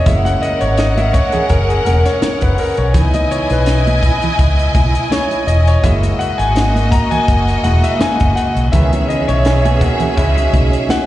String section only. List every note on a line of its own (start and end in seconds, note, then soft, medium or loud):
0.06 2.91 C#4 medium
0.06 2.91 A#4 medium
0.06 2.91 F#5 medium
2.94 5.79 E4 medium
2.94 5.79 D#5 medium
2.94 5.79 G#5 medium
5.84 8.69 A#3 medium
5.84 8.69 F#4 medium
5.84 8.69 D#5 loud
8.73 11.06 C#4 medium
8.73 11.06 G#4 medium
8.73 11.06 E5 medium